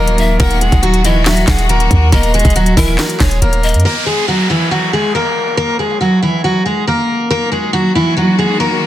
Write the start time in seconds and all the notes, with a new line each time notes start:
Already playing: D#1 D#3 F#3 A#3 F#4 A#4 D#5
0.08 closed hi-hat
0.18 E5, closed hi-hat
0.40 D#1 A#3 F#4 A#4 F#5, kick, closed hi-hat
0.51 closed hi-hat
0.61 G#3 G#4, closed hi-hat
0.72 D#1, kick, closed hi-hat
0.83 F#3 F#4, closed hi-hat
0.94 closed hi-hat
1.05 E3 E4 D#5, closed hi-hat
1.26 F#3 F#4 E5, snare, clap, closed hi-hat
1.37 closed hi-hat
1.47 D#1 G#3 G#4 F#5, kick, snare, clap, closed hi-hat
1.58 closed hi-hat
1.69 A#3 A#4, closed hi-hat
1.80 closed hi-hat
1.91 D#2, kick, closed hi-hat
2.12 D#1 A#3 A#4 D#5, kick, closed hi-hat
2.23 closed hi-hat
2.34 G#3 G#4, closed hi-hat
2.39 closed hi-hat
2.45 D#1, kick, closed hi-hat
2.50 closed hi-hat
2.56 F#3 F#4, closed hi-hat
2.66 closed hi-hat
2.77 D#1 E3 E4 A#4, kick, open hi-hat
2.98 F#3 F#4, snare, clap, closed hi-hat
3.10 closed hi-hat
3.20 D#1 G#3 G#4 C#5, kick, snare, clap, closed hi-hat
3.31 closed hi-hat
3.42 D#1 A#3 A#4, closed hi-hat
3.53 closed hi-hat
3.63 D#5, closed hi-hat
3.69 closed hi-hat
3.74 F#2, closed hi-hat
3.80 closed hi-hat
3.85 A#3 A#4, downlifter
4.06 G#3 G#4
4.28 F#3 F#4
4.50 E3 E4
4.71 F#3 F#4
4.93 G#3 G#4
5.15 A#3 A#4
5.57 A#3 A#4
5.79 G#3 G#4
6.01 F#3 F#4
6.23 E3 E4
6.44 F#3 F#4
6.66 G#3 G#4
6.87 A#3 A#4
7.30 D#3 F#3 A#3 F#4 A#4
7.52 G#3 G#4
7.73 F#3 F#4
7.95 E3 E4
8.17 F#3 F#4
8.39 G#3 G#4
8.60 A#3 A#4